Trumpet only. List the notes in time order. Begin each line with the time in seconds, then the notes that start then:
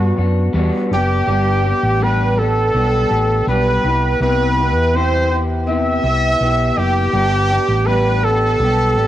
Already playing: F#4
0.93 G4
2.03 B4
2.38 A4
3.48 B4
4.22 B4
4.95 C5
5.69 E5
6.78 G4
7.86 B4
8.24 A4